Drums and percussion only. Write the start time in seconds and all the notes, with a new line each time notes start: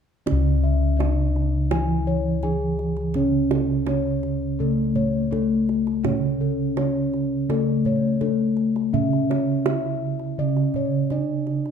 0.27 kendang high, kendang low
1.00 kendang slap, kendang high
1.36 kendang slap
1.71 kendang high
2.43 kendang slap, kendang low
2.79 kendang slap
2.97 kendang slap
3.14 kendang low
3.51 kendang high
3.87 kendang slap, kendang high
4.23 kendang slap
4.95 kendang low
5.33 kendang slap, kendang low
5.69 kendang slap
5.87 kendang slap
6.04 kendang high, kendang low
6.77 kendang slap, kendang high
7.13 kendang slap
7.50 kendang high
7.85 kendang low
8.21 kendang slap, kendang low
8.57 kendang slap
8.76 kendang slap
8.94 kendang low
9.13 kendang slap
9.31 kendang slap, kendang high
9.66 kendang slap, kendang high
10.19 kendang slap
10.56 kendang slap
10.74 kendang low
11.10 kendang slap, kendang low
11.47 kendang slap
11.65 kendang slap